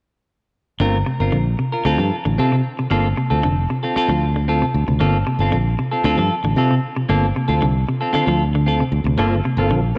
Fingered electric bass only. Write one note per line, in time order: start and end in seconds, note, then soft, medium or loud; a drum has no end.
0.80 1.02 G1 medium
1.20 1.31 G1 medium
1.32 1.54 A#1 medium
1.85 1.96 D2 medium
1.99 2.10 G2 medium
2.25 2.36 A1 medium
2.39 2.60 C3 medium
2.91 3.12 G1 medium
3.31 3.41 D2 medium
3.44 3.65 F1 medium
3.96 muted fingered electric bass stroke soft
4.08 4.62 D2 medium
4.74 4.85 D2 medium
4.88 4.98 D2 medium
5.01 5.22 G1 medium
5.39 5.50 G1 medium
5.52 5.74 A#1 medium
6.04 6.16 D2 medium
6.17 6.29 G2 medium
6.44 6.55 A1 medium
6.56 6.78 C3 medium
7.09 7.31 G1 medium
7.48 7.59 D2 medium
7.62 7.83 C2 medium
8.13 muted fingered electric bass stroke soft
8.27 8.81 D2 medium
8.92 9.03 D2 medium
9.04 9.16 D2 medium
9.18 9.40 G1 medium
9.57 9.68 G1 medium
9.69 9.91 A#1 medium